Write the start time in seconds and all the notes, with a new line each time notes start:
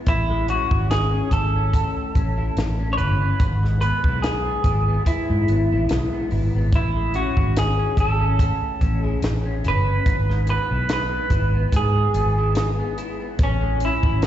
Already playing: G#3 B3 E4
0.07 A1 E4, kick, closed hi-hat
0.30 G#3
0.48 C#4 F#4, closed hi-hat
0.71 G#1 E4, kick
0.91 G#4, snare, closed hi-hat
1.14 C#4
1.31 G#1 E4 A4, kick, closed hi-hat
1.56 C#4
1.73 A2, kick, closed hi-hat
2.15 A1 C#4, kick, closed hi-hat
2.38 E4
2.57 A1, snare, closed hi-hat
2.79 C#4
2.93 C#5
2.97 G1 E4 B4, closed hi-hat
3.22 C#4
3.40 G#1 G#2, kick, closed hi-hat
3.63 G#3, snare
3.81 B3 B4, closed hi-hat
4.04 B1 E4, kick
4.22 G#3 G#4, snare, closed hi-hat
4.46 B3
4.64 G#1 E4, kick, closed hi-hat
4.88 B3
5.06 G#2 E4, kick, closed hi-hat
5.30 G#2 G#3
5.48 G#1 B3, closed hi-hat
5.72 A1 E4
5.89 B1 G#3, snare, closed hi-hat
6.13 B3
6.31 G#1 E4, open hi-hat
6.55 G#1 B3
6.72 A1 E4, kick, closed hi-hat
6.96 G#3
7.14 C#4 F#4, closed hi-hat
7.37 G#1 E4, kick
7.57 G#4, snare, closed hi-hat
7.79 C#4
7.97 G#1 E4 A4, kick, closed hi-hat
8.20 C#4
8.39 A2, kick, closed hi-hat
8.81 A1 C#4, kick, closed hi-hat
9.03 E4 G#4
9.22 A1, snare, closed hi-hat
9.46 C#4
9.64 G1 E4 B4, closed hi-hat
9.89 C#4
10.06 G#1 G#2, kick, closed hi-hat
10.29 G#3, snare
10.47 B3 B4, closed hi-hat
10.71 B1 E4
10.89 G#3 B4, snare, closed hi-hat
11.13 B3
11.30 G#1 E4, kick, closed hi-hat
11.54 B3
11.72 G#2 G#4, kick, closed hi-hat
11.96 G#3
12.14 G#1 B3, closed hi-hat
12.38 E4
12.55 G#3, snare, closed hi-hat
12.80 B3
12.98 E4, closed hi-hat
13.20 B3
13.39 A1, kick, closed hi-hat
13.43 C#4
13.62 G#3
13.80 C#4, closed hi-hat
13.85 E4
14.03 G#1 E4, kick
14.22 G#3, snare, closed hi-hat